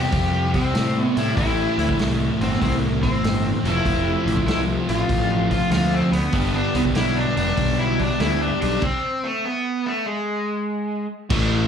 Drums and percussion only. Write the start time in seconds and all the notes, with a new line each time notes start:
0.12 kick, open hi-hat
0.54 kick, open hi-hat
0.75 snare, open hi-hat
1.17 open hi-hat
1.37 kick, open hi-hat
1.79 open hi-hat
1.89 kick
1.99 snare, open hi-hat
2.41 open hi-hat
2.53 snare
2.62 kick, open hi-hat
3.03 kick, open hi-hat
3.24 snare, open hi-hat
3.65 open hi-hat
3.85 kick, open hi-hat
4.28 open hi-hat
4.37 kick
4.48 snare, open hi-hat
4.89 open hi-hat
5.09 kick, open hi-hat
5.51 kick, open hi-hat
5.71 snare, open hi-hat
6.13 open hi-hat
6.33 kick, open hi-hat
6.75 open hi-hat
6.85 kick
6.95 snare, open hi-hat
7.37 open hi-hat
7.48 snare
7.57 kick, open hi-hat
8.00 kick, open hi-hat
8.20 snare, open hi-hat
8.62 open hi-hat
8.82 kick, crash
11.30 kick, crash